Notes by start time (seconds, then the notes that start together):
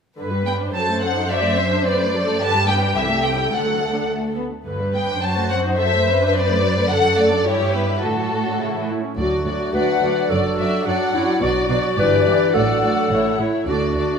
0.18 G2 D3 B4
0.32 G3
0.46 B3 G5
0.60 D4
0.75 F#2 F#3 A4 C5 A5
0.89 A3
1.02 C4 F#5
1.16 D#4
1.30 F#3 D5 E5
1.43 A3
1.57 C4 C5
1.71 D4
1.85 C4 B4 D5
1.99 A3
2.13 F#3 A4
2.27 A3
2.41 G2 D3 G4 B4 A5
2.55 G3
2.68 B3 G5
2.82 D4
2.96 C2 E3 A4 E5
3.11 A3
3.24 C4 G5
3.39 E4
3.53 D2 D3 A4 F#5
3.67 F#3
3.81 A3
3.95 D4
4.09 A3
4.37 B3
4.66 G2 D3 B4
4.80 G3
4.94 B3 G5
5.09 D4
5.22 F#2 F#3 F#4 C5 A5
5.37 A3
5.50 C4 F#5
5.65 D#4
5.77 F#3 A4 E5
5.93 A3
6.05 C4 B4
6.20 D4
6.27 E5
6.34 C4 D5
6.48 A3
6.61 F#3
6.75 A3
6.88 D3 A4 F#5
7.03 F#3
7.17 A3 D5
7.32 D4
7.45 G2 E3 E4 G4 C#5
7.59 G3
7.73 B3 B4
7.88 G3
8.02 A2 D3 F#4 A4
8.16 F#3
8.31 A3
8.45 D4
8.59 C#3 E4
8.74 E3
8.89 A3 E4
9.03 C#4
9.17 D2 F#3 A3 D4 F#4 D5
9.45 D2 F#3 F#4 D5
9.73 D2 F#3 F#4 B4 D5 F#5
10.01 D2 F#3 F#4 D5
10.29 F#1 F#2 F#3 F#4 A4 D5
10.58 F#2 F#3 F#4 D5 E5
10.85 F#2 F#3 D4 F#4 D5 F#5
11.13 F#2 F#3 E4 F#4 D5
11.40 B1 B2 F#3 D4 F#4 D5
11.68 B2 F#3 F#4 D5
11.96 G1 G2 E3 D4 G4 B4 D5
12.25 G2 E3 G4 D5
12.54 A1 A2 F#3 A3 D4 F#4 A4 D5 F#5
12.82 A2 A3 F#4 D5
13.10 A1 A2 A3 C#4 E4 C#5
13.38 A2 A3 E4 C#5
13.67 D2 A3 D4 F#4 D5
13.95 D2 A3 D4 D5